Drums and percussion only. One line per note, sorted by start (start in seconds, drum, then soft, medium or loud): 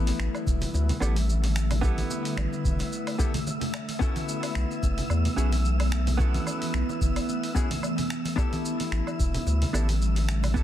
0.07 open hi-hat medium
0.07 muted conga medium
0.07 shaker soft
0.20 finger snap medium
0.20 shaker soft
0.35 low woodblock medium
0.35 shaker soft
0.46 kick loud
0.46 muted conga medium
0.46 high conga medium
0.46 shaker medium
0.61 open hi-hat medium
0.61 low conga medium
0.61 shaker soft
0.74 muted conga medium
0.74 shaker soft
0.89 open hi-hat soft
0.89 low conga medium
0.89 shaker soft
1.02 low woodblock medium
1.02 shaker medium
1.16 open hi-hat medium
1.16 muted conga soft
1.16 high conga medium
1.16 shaker soft
1.29 shaker soft
1.44 open hi-hat soft
1.44 muted conga medium
1.44 shaker soft
1.56 finger snap medium
1.56 shaker medium
1.71 open hi-hat medium
1.71 low conga medium
1.71 low woodblock medium
1.71 shaker soft
1.83 kick loud
1.83 muted conga soft
1.83 shaker soft
1.98 open hi-hat soft
1.98 high conga medium
1.98 shaker soft
2.10 muted conga medium
2.10 shaker medium
2.25 open hi-hat medium
2.25 shaker soft
2.37 finger snap medium
2.37 low woodblock medium
2.37 shaker soft
2.52 muted conga medium
2.52 shaker soft
2.65 kick loud
2.65 high conga medium
2.65 shaker medium
2.79 open hi-hat soft
2.79 muted conga medium
2.79 shaker soft
2.92 shaker soft
3.07 open hi-hat soft
3.07 low woodblock medium
3.07 shaker soft
3.19 kick loud
3.19 muted conga medium
3.19 shaker medium
3.34 open hi-hat medium
3.34 high conga medium
3.34 low conga medium
3.34 shaker soft
3.47 muted conga medium
3.47 shaker soft
3.61 open hi-hat soft
3.61 low conga medium
3.61 shaker soft
3.74 finger snap medium
3.74 low woodblock medium
3.74 shaker medium
3.89 open hi-hat medium
3.89 muted conga medium
3.89 shaker soft
4.01 kick loud
4.01 shaker soft
4.16 open hi-hat soft
4.16 muted conga medium
4.16 high conga medium
4.16 shaker soft
4.29 shaker medium
4.43 open hi-hat medium
4.43 low woodblock medium
4.43 shaker soft
4.55 finger snap medium
4.55 muted conga soft
4.55 shaker soft
4.71 shaker soft
4.83 kick loud
4.83 muted conga medium
4.83 high conga medium
4.83 shaker medium
4.98 open hi-hat soft
4.98 low conga medium
4.98 shaker soft
5.10 low woodblock medium
5.10 shaker soft
5.25 open hi-hat soft
5.25 muted conga soft
5.25 low conga medium
5.25 shaker soft
5.38 shaker medium
5.52 open hi-hat medium
5.52 muted conga medium
5.52 high conga medium
5.52 shaker soft
5.65 shaker soft
5.80 open hi-hat soft
5.80 low woodblock medium
5.80 shaker soft
5.92 finger snap medium
5.92 muted conga medium
5.92 shaker medium
6.07 open hi-hat medium
6.07 low conga medium
6.07 shaker soft
6.19 kick loud
6.19 muted conga medium
6.19 shaker soft
6.34 open hi-hat soft
6.34 high conga loud
6.34 shaker soft
6.47 low woodblock medium
6.47 shaker medium
6.62 open hi-hat medium
6.62 muted conga soft
6.62 shaker soft
6.74 finger snap medium
6.74 shaker soft
6.89 muted conga medium
6.89 shaker soft
7.01 kick loud
7.01 high conga medium
7.01 shaker medium
7.16 open hi-hat medium
7.16 low woodblock medium
7.16 shaker soft
7.29 muted conga soft
7.29 shaker soft
7.44 open hi-hat soft
7.44 shaker soft
7.56 kick loud
7.56 muted conga medium
7.56 shaker medium
7.71 open hi-hat medium
7.71 high conga medium
7.71 low conga medium
7.71 shaker soft
7.83 low woodblock medium
7.83 shaker soft
7.98 open hi-hat soft
7.98 muted conga soft
7.98 low conga medium
7.98 shaker soft
8.10 finger snap medium
8.10 shaker medium
8.25 open hi-hat medium
8.25 muted conga medium
8.25 shaker soft
8.38 kick loud
8.38 low woodblock medium
8.38 shaker soft
8.52 open hi-hat soft
8.52 muted conga soft
8.52 high conga loud
8.52 shaker soft
8.65 shaker medium
8.80 open hi-hat medium
8.80 muted conga medium
8.80 shaker soft
8.92 finger snap medium
8.92 shaker soft
9.07 low woodblock medium
9.07 shaker soft
9.19 kick loud
9.19 muted conga soft
9.19 high conga medium
9.19 shaker medium
9.34 open hi-hat medium
9.34 low conga medium
9.34 shaker soft
9.47 muted conga medium
9.47 shaker soft
9.62 open hi-hat soft
9.62 low conga medium
9.62 shaker soft
9.74 low woodblock medium
9.74 shaker medium
9.89 open hi-hat medium
9.89 muted conga soft
9.89 high conga medium
9.89 shaker soft
10.02 shaker soft
10.16 open hi-hat soft
10.16 muted conga medium
10.16 shaker soft
10.29 finger snap medium
10.29 shaker medium
10.43 open hi-hat medium
10.43 low conga medium
10.43 low woodblock medium
10.43 shaker soft
10.55 kick loud
10.55 muted conga soft
10.55 shaker soft